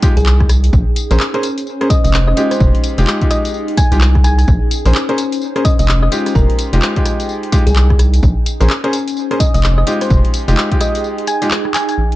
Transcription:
Already playing: D#4 G#4 G5
0.03 G#3 D#4 F4 G4, kick, closed hi-hat, tambourine
0.17 C2 G#4, closed hi-hat, tambourine
0.26 clap, tambourine
0.40 kick, cross-stick
0.49 cross-stick, closed hi-hat, tambourine
0.64 closed hi-hat, tambourine
0.73 A#1 C#4, kick, tambourine
0.96 closed hi-hat, tambourine
1.11 A#1 C#4 G#4 A#4 C5, closed hi-hat, tambourine
1.18 C5, clap, tambourine
1.34 C#4 G#4 A#4 C5 G#5, closed hi-hat
1.43 closed hi-hat, tambourine
1.58 closed hi-hat, tambourine
1.67 tambourine
1.81 C#4 G#4 A#4 C5, cross-stick, closed hi-hat
1.90 D#5, kick, closed hi-hat, tambourine
2.04 F1 D#5, closed hi-hat, tambourine
2.14 clap, tambourine
2.27 D#5, cross-stick
2.37 G#3 D#4 F4 G4, closed hi-hat, tambourine
2.51 C5, cross-stick, closed hi-hat, tambourine
2.60 F1, kick, tambourine
2.75 G5, closed hi-hat
2.82 G#4, closed hi-hat, tambourine
2.98 F1 G#3 D#4 F4 G4, closed hi-hat, tambourine
3.07 clap, tambourine
3.22 G#3 D#4 F4 G4, kick, closed hi-hat
3.31 D#5, cross-stick, closed hi-hat, tambourine
3.45 closed hi-hat, tambourine
3.54 tambourine
3.68 closed hi-hat
3.77 G#5, kick, closed hi-hat, tambourine
3.92 C2 G#3 D#4 F4 G4, closed hi-hat, tambourine
4.01 clap, tambourine
4.15 kick, cross-stick
4.24 G#5, cross-stick, closed hi-hat, tambourine
4.38 G#5, closed hi-hat, tambourine
4.48 A#1 C#4, kick, tambourine
4.62 C5
4.71 closed hi-hat, tambourine
4.85 A#1 C#4 G#4 A#4 C5, closed hi-hat, tambourine
4.95 clap, tambourine
5.09 C#4 G#4 A#4 C5 G#5, closed hi-hat
5.18 closed hi-hat, tambourine
5.32 closed hi-hat, tambourine
5.41 tambourine
5.56 C#4 G#4 A#4 C5, cross-stick, closed hi-hat
5.65 D#5, kick, closed hi-hat, tambourine
5.79 F1 D#5, closed hi-hat, tambourine
5.88 clap, tambourine
6.03 D#5, cross-stick
6.12 G#3 D#4 F4 G4, closed hi-hat, tambourine
6.26 cross-stick, closed hi-hat, tambourine
6.34 F1 A#4 G5, kick, tambourine
6.50 closed hi-hat
6.54 G#4
6.59 closed hi-hat, tambourine
6.73 F1 G#3 D#4 F4 G4, closed hi-hat, tambourine
6.82 clap, tambourine
6.96 G#3 D#4 F4 G4, kick, closed hi-hat
7.06 cross-stick, closed hi-hat, tambourine
7.20 closed hi-hat, tambourine
7.29 tambourine
7.43 closed hi-hat
7.52 G#3 D#4 F4 G4, kick, closed hi-hat, tambourine
7.67 C2 G#4, closed hi-hat, tambourine
7.76 clap, tambourine
7.90 kick, cross-stick
7.99 cross-stick, closed hi-hat, tambourine
8.14 closed hi-hat, tambourine
8.23 A#1 C#4, kick, tambourine
8.44 G#5, closed hi-hat, tambourine
8.60 A#1 C#4 G#4 A#4 C5, closed hi-hat, tambourine
8.70 clap, tambourine
8.84 C#4 G#4 A#4 C5, closed hi-hat
8.93 closed hi-hat, tambourine
9.08 closed hi-hat, tambourine
9.17 tambourine
9.31 C#4 G#4 A#4 C5, cross-stick, closed hi-hat
9.40 D#5, kick, closed hi-hat, tambourine
9.54 F1 D#5, closed hi-hat, tambourine
9.63 clap, tambourine
9.78 D#5, cross-stick
9.87 G#3 D#4 F4 G4, closed hi-hat, tambourine
10.01 C5 G5, cross-stick, closed hi-hat, tambourine
10.10 F1, kick, tambourine
10.23 G#4, closed hi-hat
10.34 closed hi-hat, tambourine
10.48 F1 G#3 D#4 F4 G4, closed hi-hat, tambourine
10.57 clap, tambourine
10.71 G#3 D#4 F4 G4, kick, closed hi-hat
10.81 D#5, cross-stick, closed hi-hat, tambourine
10.95 closed hi-hat, tambourine
11.04 tambourine
11.18 closed hi-hat
11.27 G#5, closed hi-hat, tambourine
11.42 G#3 D#4 F4 G4, closed hi-hat, tambourine
11.51 clap, tambourine
11.65 cross-stick
11.74 G#5, clap, closed hi-hat, tambourine
11.89 G#5, closed hi-hat, tambourine
11.97 A#1 C#4
12.12 closed hi-hat

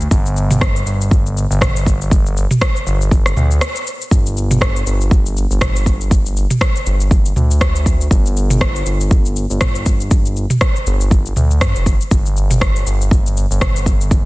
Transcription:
0.01 shaker
0.11 G1, kick, shaker
0.26 shaker
0.36 shaker
0.51 mid tom, shaker
0.61 kick, cross-stick, shaker
0.76 shaker
0.86 G1, shaker
1.01 shaker
1.11 kick, shaker
1.26 shaker
1.37 shaker
1.50 G1, shaker
1.61 kick, cross-stick, mid tom, shaker
1.76 shaker
1.86 kick, shaker
2.01 shaker
2.11 kick, shaker
2.26 shaker
2.37 shaker
2.51 mid tom, shaker
2.61 kick, cross-stick, shaker
2.76 shaker
2.86 G1, shaker
3.01 shaker
3.11 kick, shaker
3.26 cross-stick, shaker
3.36 D2, mid tom, shaker
3.51 shaker
3.61 cross-stick, shaker
3.76 shaker
3.87 shaker
4.01 shaker
4.11 G1, kick, shaker
4.26 shaker
4.37 shaker
4.51 mid tom, shaker
4.61 kick, cross-stick, shaker
4.76 shaker
4.86 G1, shaker
5.01 shaker
5.11 kick, shaker
5.26 shaker
5.37 shaker
5.51 G1, shaker
5.61 kick, cross-stick, mid tom, shaker
5.76 shaker
5.86 kick, shaker
6.01 shaker
6.11 kick, shaker
6.26 shaker
6.37 shaker
6.50 mid tom, shaker
6.61 kick, cross-stick, shaker
6.76 shaker
6.86 G1, shaker
7.00 shaker
7.11 kick, shaker
7.26 shaker
7.36 D2, mid tom, shaker
7.51 shaker
7.61 kick, cross-stick, shaker
7.76 shaker
7.86 kick, shaker
8.01 shaker
8.11 G1, kick, shaker
8.26 shaker
8.37 shaker
8.50 mid tom, shaker
8.61 kick, cross-stick, shaker
8.76 shaker
8.86 G1, shaker
9.01 shaker
9.11 kick, shaker
9.25 shaker
9.36 shaker
9.50 G1, shaker
9.61 kick, cross-stick, mid tom, shaker
9.75 shaker
9.86 kick, shaker
10.00 shaker
10.11 kick, shaker
10.26 shaker
10.36 shaker
10.50 mid tom, shaker
10.61 kick, cross-stick, shaker
10.76 shaker
10.86 G1, shaker
11.01 shaker
11.11 kick, shaker
11.26 shaker
11.36 D2, mid tom, shaker
11.51 shaker
11.61 G2, kick, cross-stick, shaker
11.76 F1, shaker
11.86 G1, kick, shaker
12.01 shaker
12.11 G1, kick, shaker
12.26 shaker
12.37 shaker
12.51 mid tom, shaker
12.61 kick, cross-stick, shaker
12.76 shaker
12.86 G1, shaker
13.01 shaker
13.11 kick, shaker
13.26 shaker
13.37 shaker
13.51 G1, shaker
13.61 kick, cross-stick, mid tom, shaker
13.76 shaker
13.86 kick, shaker
14.01 shaker
14.11 kick, shaker

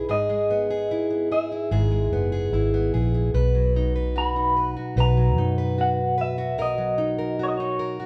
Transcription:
Already playing: D#4 B4
0.09 G#1 G#2 G#4 D#5
0.29 G#3
0.50 B3
0.70 G#4
0.91 E4
1.10 B3
1.32 G#4 E5
1.52 E4
1.71 G#1 G#2 G#4
1.91 G#3
2.12 F#1 B3
2.32 G#4
2.52 G#1 E4
2.74 B3
2.94 A#1 G#4
3.15 E4
3.34 B1 B2 B4
3.55 F#3
3.76 D#4
3.96 B4
4.16 F#4 B5
4.36 D#4
4.57 B4
4.74 F#4 A#5
4.96 B1 B2 B4
5.00 A#5
5.17 F#3
5.37 F#2 D#4
5.58 B4
5.78 F#4 F#5
6.18 B4 E5
6.38 F#4
6.58 B1 B2 A#4 D#5
6.78 F#3
6.98 D#4
7.19 A#4
7.39 F#4
7.43 C#5
7.48 D#5
7.57 D#4 C#5
7.79 A#4
8.00 F#4

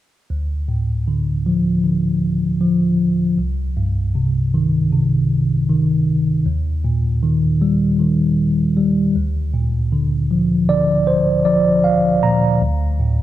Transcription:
0.30 D2
0.68 A2
1.08 D3
1.46 F3
1.84 D3
2.61 F3
3.38 C2
3.77 G2
4.15 C3
4.54 D#3
4.92 C3
5.69 D#3
6.46 D#2
6.84 A#2
7.23 D#3
7.62 G3
8.00 D#3
8.77 G3
9.16 D2
9.54 A#2
9.92 D3
10.31 F3
10.69 D3 D5
11.07 C5
11.45 F3 D5
11.84 F5
12.23 A#2 A#5
12.61 D2
13.00 A2

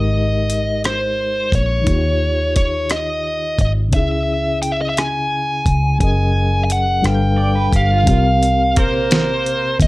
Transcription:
Already playing: G#1 G#3 D#4 G4 A#4 D#5
0.50 closed hi-hat
0.84 C5, cross-stick, closed hi-hat
1.52 A#1 C#5, kick, closed hi-hat
1.82 D#3 D#4
1.87 D#2 F4 G4, kick, closed hi-hat
1.92 C#5
2.56 C#5, kick, closed hi-hat
2.90 D#5, cross-stick, closed hi-hat
3.59 G#1 D#5, kick, closed hi-hat
3.89 C#3 C#4, closed hi-hat
3.93 C#2 D#4 G#4 E5, kick
3.99 E4 E5
4.62 G5, closed hi-hat
4.72 E5
4.81 D#5
4.89 E5
4.97 G#5, cross-stick, closed hi-hat
5.66 C#2, kick, closed hi-hat
5.99 F#1 F#3 C#4 G#4 G#5, kick, closed hi-hat
6.03 A#4 D#5
6.64 G#5
6.70 F#5, closed hi-hat
7.02 G1 G3 D4 A4 B4 G5, cross-stick, closed hi-hat
7.07 F5
7.38 D5
7.55 B4
7.73 G1 G4 F5, kick, closed hi-hat
7.92 F4
8.03 C3 C4, kick, closed hi-hat
8.08 C2 G4 A#4
8.14 F5
8.43 closed hi-hat
8.76 A#1 A#3 A#4 C5, kick, closed hi-hat
9.11 snare, closed hi-hat
9.46 closed hi-hat
9.80 D#2 D#5, kick, closed hi-hat

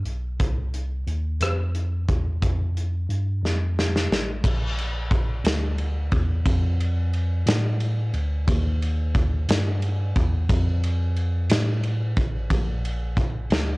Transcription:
0.05 B1, closed hi-hat
0.40 C2, kick, closed hi-hat
0.74 closed hi-hat
1.07 D#2, closed hi-hat
1.41 F2, cross-stick, closed hi-hat
1.75 closed hi-hat
2.08 E2, kick, closed hi-hat
2.42 F2, kick, closed hi-hat
2.77 closed hi-hat
3.09 G2, closed hi-hat
3.43 F2, snare
3.79 snare
3.96 snare
4.10 A1, snare
4.44 A#1, kick, crash
4.78 ride
5.11 kick, ride
5.44 D2, snare, ride
5.78 ride
6.12 E2, kick, ride
6.46 F2, kick, ride
6.80 ride
7.13 ride
7.46 A2, snare, ride
7.80 ride
8.14 D2, ride
8.47 D#2, kick, ride
8.82 ride
9.15 kick, ride
9.49 G2, snare, ride
9.82 ride
10.16 E2, kick, ride
10.49 F2, kick, ride
10.84 ride
11.16 ride
11.50 A2, snare, ride
11.83 ride
12.17 A1, kick, ride
12.50 A#1, kick, ride
12.85 ride
13.17 kick, ride
13.50 D2, snare, ride

